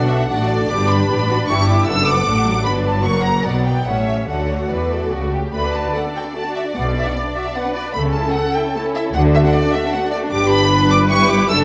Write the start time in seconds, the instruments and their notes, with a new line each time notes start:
Already playing: double bass section B1, cello section B2, viola section D4 F#4, violin section A4 D5 F#5
0.10 violin section E5
0.27 double bass section A1, violin section D5 F#5
0.31 cello section A2, viola section D4 F#4, violin section A4
0.48 violin section D5
0.68 double bass section G1, cello section G2, viola section G4, violin section B4 D5 D6
0.89 violin section B5
1.09 double bass section A1, cello section A2, viola section G4, violin section B4 D5
1.29 viola section F#4
1.48 double bass section G1, cello section G2, viola section E4, violin section G4 E5 C#6
1.68 violin section D6
1.87 double bass section F#1, cello section F#2, viola section B3 D4, violin section A4 F#5 E6
2.07 violin section D6
2.27 double bass section A1, cello section A2, viola section A3 D4
2.47 viola section F#3
2.65 double bass section G1, cello section G2, viola section D4, violin section B4 D5 B5
2.87 violin section A5
3.04 double bass section F#1, cello section F#2, viola section A#3, violin section A#4 F#5 C#6
3.24 violin section A#5
3.44 double bass section B1, cello section B2, viola section F#3 B3, violin section D5 F#5
3.65 violin section G5
3.85 double bass section A1, cello section A2, viola section A3 C#4, violin section C#5 E5 F#5
4.07 violin section E5
4.17 violin section C#5
4.26 double bass section D2, cello section D3, viola section A3 F#4, violin section A4 C#5 F#5
4.68 double bass section E2, cello section E3, violin section B4 D5
4.92 violin section A4
5.13 double bass section C#2, cello section C#3, violin section F#4
5.33 violin section G4
5.53 double bass section D2, cello section D3, violin section A3 D5 B5, viola section B4
5.65 violin section D4
5.74 violin section F#4 A5
5.86 violin section D4
5.94 violin section A3 F#5, viola section A4
6.05 violin section D4
6.15 violin section F#4 G5
6.24 violin section D4
6.34 violin section A3 A5, viola section F#4
6.44 violin section D4
6.54 violin section F#4 E5
6.64 violin section D4
6.74 double bass section B1, cello section B2, violin section B3 F#5, viola section D5
6.85 violin section D4
6.95 violin section F#4 E5
7.05 violin section D4 F#5
7.14 violin section B3 D5
7.25 violin section D4
7.34 violin section F#4 E5
7.46 violin section D4
7.55 violin section B3 F#5, viola section B4
7.65 violin section D4
7.74 violin section F#4 D5
7.86 violin section D4
7.93 double bass section C#2, cello section C#3, violin section A3 A4 B5, viola section A4
8.06 violin section C#4
8.12 violin section A5
8.17 violin section E4
8.27 violin section C#4
8.33 violin section A3 F#5
8.46 violin section C#4
8.54 violin section E4 G5
8.66 violin section C#4
8.75 violin section A3 A5, viola section E4
8.85 violin section C#4
8.95 violin section E4 E5
9.05 violin section C#4
9.14 double bass section D2, cello section D3, violin section A3 F#5, viola section F#4
9.25 violin section D4
9.35 violin section A3 E5
9.44 violin section D4 F#5
9.53 violin section A3 D5
9.65 violin section D4
9.72 violin section A3 E5
9.86 violin section D4
9.91 violin section A3 F#5
10.04 violin section D4
10.11 violin section A3 D5
10.23 violin section D4
10.31 double bass section G1, cello section G2, violin section D4 B4 D6, viola section G4
10.50 violin section B5
10.71 viola section B4
10.90 violin section D6
11.10 violin section E4 G4 C#6
11.30 violin section D6
11.50 double bass section F#1, cello section F#2, violin section D4 A4 E6, viola section A4